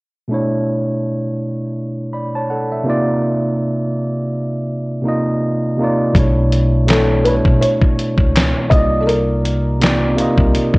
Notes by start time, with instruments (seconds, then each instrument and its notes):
0.28 tine electric piano B2 A3 D4
0.33 tine electric piano E4 C#5
2.13 tine electric piano D5 B5
2.35 tine electric piano C#5 A5
2.50 tine electric piano A4 F#5
2.72 tine electric piano E5
2.84 tine electric piano C3 A#3 D#4
2.89 tine electric piano F4 D5
5.02 tine electric piano C3 A#3 D#4
5.07 tine electric piano F4 D#5
5.77 tine electric piano C3 A#3 D#4
5.82 tine electric piano F4 D5
6.13 upright bass B1, tine electric piano B2 A3 D4, kick, closed hi-hat
6.18 tine electric piano E4 C#5
6.52 closed hi-hat
6.85 tine electric piano B2 A3 D4, felt piano A4, closed hi-hat
6.90 tine electric piano E4 C#5, snare, clap
7.23 tine electric piano B2 A3 D4, felt piano B4, closed hi-hat
7.28 tine electric piano E4 C#5
7.45 upright bass B1, kick
7.61 felt piano C#5, closed hi-hat
7.82 kick
7.99 closed hi-hat
8.18 upright bass C#2, kick
8.36 snare, clap, closed hi-hat
8.70 upright bass C2, tine electric piano C3 A#3 D#4, felt piano D#5, kick, closed hi-hat
8.75 tine electric piano F4 D5
9.00 felt piano A4
9.07 felt piano A#4, closed hi-hat
9.45 closed hi-hat
9.79 tine electric piano C3 A#3 D#4, snare, clap, closed hi-hat
9.84 tine electric piano F4 D5
10.16 tine electric piano C3 A#3 D#4, closed hi-hat
10.20 tine electric piano F4 D#5
10.38 upright bass C2, kick
10.55 closed hi-hat
10.74 kick